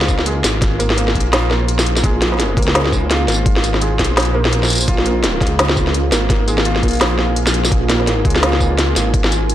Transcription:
Already playing: detuned saw bass C#2, felt piano A#3 F4, ambient pad A#3 F4 F5
0.01 snare
0.08 kick, tambourine
0.19 snare
0.26 felt piano G#3, closed hi-hat
0.44 detuned saw bass G#1, snare, closed hi-hat, tambourine
0.62 kick, snare, closed hi-hat
0.79 felt piano A#3, closed hi-hat, tambourine
0.90 snare
0.97 felt piano A#3, closed hi-hat
1.08 snare
1.15 detuned saw bass A#1, kick, closed hi-hat
1.20 closed hi-hat
1.33 felt piano F4, snare, closed hi-hat
1.50 felt piano A#3, snare
1.68 closed hi-hat
1.79 snare, tambourine
1.86 closed hi-hat
1.96 snare, tambourine
2.04 detuned saw bass A#1, felt piano G#3, ambient pad C5, kick, closed hi-hat
2.22 snare, closed hi-hat
2.32 snare
2.34 snare
2.37 snare
2.40 snare, closed hi-hat
2.43 snare
2.46 snare
2.57 detuned saw bass C#2, felt piano A#3, kick, closed hi-hat
2.63 closed hi-hat
2.68 snare
2.75 felt piano A#3, snare, closed hi-hat
2.86 snare
2.93 kick, tambourine
3.10 felt piano F4, snare, closed hi-hat
3.28 detuned saw bass G#1, felt piano A#3, snare, closed hi-hat, tambourine
3.32 tambourine
3.34 tambourine
3.46 kick, closed hi-hat
3.56 snare
3.64 closed hi-hat, tambourine
3.74 snare
3.81 felt piano G#3, closed hi-hat
3.99 detuned saw bass A#1, kick, snare, closed hi-hat
4.04 closed hi-hat
4.17 snare, closed hi-hat
4.20 closed hi-hat
4.22 closed hi-hat
4.25 closed hi-hat
4.35 felt piano A#3
4.45 snare
4.52 felt piano A#3, closed hi-hat
4.63 snare, tambourine
4.65 tambourine
4.67 tambourine
4.69 closed hi-hat, tambourine
4.70 closed hi-hat, tambourine
4.73 closed hi-hat, tambourine
4.75 closed hi-hat, tambourine
4.78 closed hi-hat, tambourine
4.81 closed hi-hat, tambourine
4.84 closed hi-hat
4.86 detuned saw bass A#1, ambient pad F5, kick, closed hi-hat
4.88 felt piano F4, closed hi-hat
4.98 snare
5.06 felt piano A#3, closed hi-hat
5.24 snare, closed hi-hat
5.41 detuned saw bass C#2, kick, snare, closed hi-hat
5.47 closed hi-hat
5.59 snare, closed hi-hat
5.69 snare
5.77 kick, tambourine
5.87 snare
5.94 closed hi-hat
6.12 detuned saw bass G#1, felt piano A#3, snare, closed hi-hat, tambourine
6.30 felt piano A#3, kick, snare, closed hi-hat
6.48 felt piano G#3, closed hi-hat, tambourine
6.58 snare
6.65 felt piano F4, closed hi-hat
6.76 snare
6.83 detuned saw bass A#1, felt piano A#3, kick, closed hi-hat
6.88 closed hi-hat
6.91 closed hi-hat
6.93 closed hi-hat
6.95 closed hi-hat
6.97 closed hi-hat
6.99 snare, closed hi-hat
7.01 closed hi-hat
7.03 closed hi-hat
7.19 snare
7.36 closed hi-hat
7.47 snare, tambourine
7.54 closed hi-hat
7.65 snare, tambourine
7.72 detuned saw bass A#1, ambient pad G#5, kick, closed hi-hat
7.89 felt piano A#3, snare, closed hi-hat
8.00 snare
8.07 felt piano A#3, snare, closed hi-hat
8.25 detuned saw bass C#2, felt piano G#3, kick, closed hi-hat
8.30 closed hi-hat
8.36 snare
8.43 felt piano F4, snare, closed hi-hat
8.53 snare
8.60 felt piano A#3, kick, tambourine
8.78 snare, closed hi-hat
8.96 detuned saw bass G#1, snare, closed hi-hat, tambourine
9.14 kick, closed hi-hat
9.24 snare
9.32 closed hi-hat, tambourine
9.50 closed hi-hat

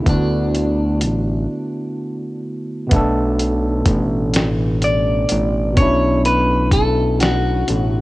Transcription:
0.01 tine electric piano D3 A3
0.06 analog synth bass D2, tine electric piano B3 E4, clean electric guitar D4, kick, closed hi-hat
0.11 tine electric piano F#4
0.55 closed hi-hat
1.01 analog synth bass A1, closed hi-hat
2.87 tine electric piano B2 B3
2.91 analog synth bass B1, tine electric piano A3 D4, kick, closed hi-hat
2.96 tine electric piano A4
3.39 closed hi-hat
3.86 analog synth bass A1, kick, closed hi-hat
4.34 snare, closed hi-hat
4.82 clean electric guitar D5, closed hi-hat
5.29 analog synth bass A1, closed hi-hat
5.73 tine electric piano B2 B3, closed hi-hat
5.77 analog synth bass B1, tine electric piano C#4 D4, clean electric guitar C#5, kick
5.82 tine electric piano E4
6.25 clean electric guitar B4, closed hi-hat
6.71 clean electric guitar A4, kick, closed hi-hat
7.20 clean electric guitar F#4, snare, closed hi-hat
7.68 analog synth bass A1, closed hi-hat

